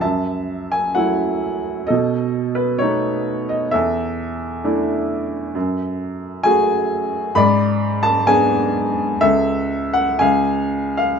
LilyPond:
<<
  \new Staff \with { instrumentName = "Grand piano" } { \time 4/4 \key fis \minor \tempo 4 = 65 << { a''8. gis''16 fis''4 dis''8. b'16 cis''8. dis''16 | e''2. gis''4 | b''8. a''16 gis''4 e''8. fis''16 gis''8. eis''16 | } \\ { e''2 a'2 | a'2. r4 | d''2 a'4 eis''4 | } >> }
  \new Staff \with { instrumentName = "Grand piano" } { \time 4/4 \key fis \minor fis,4 <fis a e'>4 b,4 <a b dis'>4 | e,4 <a d' e'>4 fis,4 <a fis' gis'>4 | gis,4 <b d' gis'>4 cis,4 cis,4 | }
>>